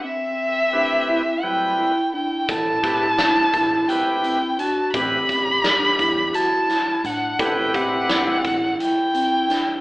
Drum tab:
HH |-------|xxxxxxx|xxxxxxx|xxxxxxx|
SD |-------|-oo----|--o--o-|--o---o|
BD |-------|oo-o---|oo-o---|oo-o---|